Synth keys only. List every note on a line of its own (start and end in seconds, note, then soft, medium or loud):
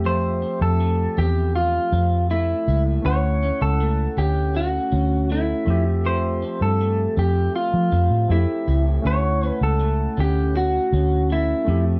0.00 2.62 A3 medium
0.00 2.63 C4 soft
0.00 2.65 G4 medium
0.00 2.64 E5 medium
3.02 5.62 A3 medium
3.02 5.63 C#4 medium
3.02 5.64 E4 soft
3.07 5.65 F#5 medium
5.65 8.25 A3 medium
5.65 8.26 C4 medium
5.65 8.27 E5 medium
5.70 8.28 G4 medium
8.28 9.01 A3 soft
8.28 9.05 C4 soft
8.28 9.05 E4 soft
8.28 9.06 G4 soft
9.02 11.62 A3 medium
9.02 11.63 C#4 medium
9.02 11.64 E4 medium
9.07 11.65 F#5 medium
11.65 12.00 A3 medium
11.65 12.00 C4 medium
11.65 12.00 E5 medium
11.70 12.00 G4 medium